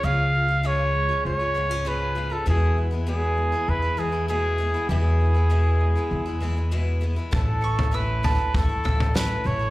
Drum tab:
SD |----------------|----------------|----------------|------------o---|
FT |----------------|----------------|----------------|o--o--o-o-oo----|
BD |----------------|----------------|----------------|o-------o-------|